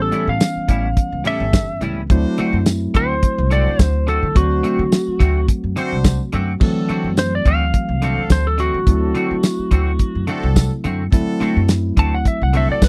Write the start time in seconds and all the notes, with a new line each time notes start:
Already playing: E3 G3 B3 C#4 G4 A4
0.02 A4
0.12 A2 G3 C#4 E4, closed hi-hat
0.28 A2 F5
0.40 snare, closed hi-hat, tambourine
0.56 muted upright bass stroke
0.68 A1 A2 G3 C#4 E4, kick, closed hi-hat
0.97 kick, closed hi-hat
1.12 C#2
1.24 A2 G3 C#4 E4 G4 A4 E5, closed hi-hat
1.40 G1
1.53 kick, snare, closed hi-hat, tambourine
1.81 C#2 A2 G3 C#4 E4, closed hi-hat
2.10 D2 F#3 A3 C4 D4 E4 F#4 C5, kick, closed hi-hat
2.38 D3 A3 C4 F#4, muted upright bass stroke, closed hi-hat
2.53 F#2
2.66 snare, closed hi-hat, tambourine
2.94 D2 D3 A3 C4 F#4 C5, kick, closed hi-hat
3.23 kick, closed hi-hat
3.38 C2
3.51 D3 A3 C4 D4 F#4 C5 D5, closed hi-hat
3.67 muted upright bass stroke
3.79 D2 C5, kick, snare, closed hi-hat, tambourine
4.07 D3 A3 C4 F#4 A4, closed hi-hat
4.23 D3
4.35 D2 F#3 A3 C4 D4 F#4 C5, kick, closed hi-hat
4.63 D3 A3 C4 F#4, closed hi-hat
4.79 D3
4.92 snare, closed hi-hat, tambourine
5.08 muted upright bass stroke
5.20 D2 D3 A3 C4 F#4, kick, closed hi-hat
5.48 kick, closed hi-hat
5.64 F#2
5.76 D3 A3 C4 D4 F#4 C5, closed hi-hat
5.92 C2
6.04 kick, snare, closed hi-hat, tambourine
6.32 F#2 D3 A3 C4 F#4, closed hi-hat
6.60 D2 E3 F#3 A3 C4 D4 F#4 A4, kick, crash
6.89 D3 A3 C4 F#4, muted upright bass stroke, closed hi-hat
7.04 F#2
7.17 C5, snare, closed hi-hat, tambourine
7.35 D5
7.45 D2 D3 A3 C4 F#4 F5, kick, closed hi-hat
7.74 kick, closed hi-hat
7.89 C2
8.02 D3 A3 C4 D4 F#4 A4, closed hi-hat
8.18 muted upright bass stroke
8.30 D2 C5, kick, snare, closed hi-hat, tambourine
8.47 A4
8.58 D3 A3 C4 F#4, closed hi-hat
8.74 D3
8.86 D2 F#3 A3 C4 D4 E4 F#4 A4, kick, closed hi-hat
9.15 D3 A3 C4 F#4, closed hi-hat
9.31 D3
9.43 snare, closed hi-hat, tambourine
9.59 muted upright bass stroke
9.71 D2 D3 A3 C4 F#4, kick, closed hi-hat
9.99 kick, closed hi-hat
10.15 F#2
10.27 D3 A3 C4 D4 F#4 A4, closed hi-hat
10.43 C2
10.56 kick, snare, closed hi-hat, tambourine
10.84 F#2 D3 A3 C4 F#4, closed hi-hat
11.12 D2 F#3 A3 C4 D4 E4 F#4 A4, kick, closed hi-hat
11.40 D3 A3 C4 F#4, muted upright bass stroke, closed hi-hat
11.56 F#2
11.68 snare, closed hi-hat, tambourine
11.97 D2 D3 A3 C4 F#4 A5, kick, closed hi-hat
12.14 F#5
12.25 E5, kick, closed hi-hat
12.42 C2 F#5
12.53 D3 A3 C4 D4 F#4 A4 E5, closed hi-hat
12.69 D5, muted upright bass stroke
12.82 D2 B4, kick, snare, closed hi-hat, tambourine